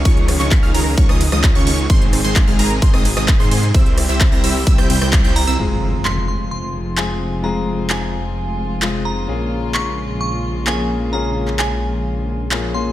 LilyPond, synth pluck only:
\new Staff \with { instrumentName = "Synth pluck" } { \time 4/4 \key f \minor \tempo 4 = 130 des'''8. des'''8 f'''16 bes''8 des'''16 ees'''16 r16 ees'''8 des'''16 des'''8 | c'''8. c'''8 f'''16 bes''8 c'''16 ees'''16 r16 ees'''8 c'''16 c'''8 | e'''8. e'''8 bes'''16 e'''8 e'''16 g'''16 g'''16 g'''8 g'''8 e'''16 | r1 |
r1 | r1 | r1 | }